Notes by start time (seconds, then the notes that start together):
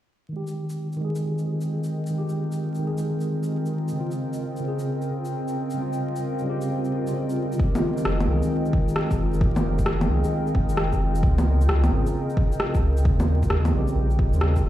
0.29 D#3 G#3 C4
0.37 G4
0.47 shaker
0.68 F4, shaker
0.72 D#5
0.93 A#4 G5, shaker
0.97 D#3 G#3
1.04 G#4
1.15 shaker
1.38 shaker
1.61 shaker
1.84 shaker
2.07 D#3, shaker
2.14 G#3
2.18 G4
2.29 shaker
2.52 shaker
2.75 D#3, shaker
2.83 G#3
2.87 G#4
2.98 shaker
3.21 shaker
3.43 shaker
3.66 shaker
3.88 C#3, shaker
3.96 C#3 C4
4.00 F4
4.11 shaker
4.33 shaker
4.56 C#3, shaker
4.64 C4
4.68 G#4
4.79 shaker
5.02 shaker
5.25 shaker
5.48 shaker
5.71 C#3, shaker
5.77 G3 C4
5.82 F4
5.93 shaker
6.16 shaker
6.39 C#3, shaker
6.44 G3 C4
6.49 G4
6.61 shaker
6.84 shaker
7.04 C#3 G3 C4, shaker
7.08 C#3 F4
7.13 G3 C4 A#4
7.30 shaker
7.52 D#3, shaker
7.59 G#3 G4, kick
7.75 low bongo, shaker
7.98 shaker
8.05 F1, cross-stick
8.20 D#3, low bongo, shaker
8.27 C2 G#3 G#4
8.43 shaker
8.65 shaker
8.73 kick
8.88 shaker
8.96 cross-stick
9.11 F1, kick, shaker
9.34 shaker
9.38 D#3, kick
9.42 G#3
9.46 G4
9.56 low bongo, shaker
9.79 kick, shaker
9.86 F1, cross-stick
10.01 low bongo, shaker
10.06 C2 D#3
10.10 G#3 G#4
10.24 shaker
10.47 shaker
10.54 F1, kick
10.69 shaker
10.77 cross-stick
10.92 F1, kick, shaker
11.15 shaker
11.20 C#2 C#3, kick
11.24 C4 F4
11.38 low bongo, shaker
11.61 shaker
11.69 C#2, cross-stick
11.84 C#3, low bongo, shaker
11.91 G#1 C4
11.95 G#4
12.06 shaker
12.30 shaker
12.37 kick
12.52 shaker
12.60 cross-stick
12.74 C#2, kick, shaker
12.97 shaker
13.02 D#2 C#3 G3, kick
13.07 C4 F4
13.20 low bongo, shaker
13.43 kick, shaker
13.50 D#2, cross-stick
13.65 low bongo, shaker
13.70 A#1 C#3 G3
13.76 C4 G4
13.88 shaker
13.95 A#1
14.10 shaker
14.19 kick
14.32 D#2 C#3 G3 C4, shaker
14.36 C#3 F4
14.41 G3 C4 A#4, cross-stick
14.56 kick, shaker
14.63 F1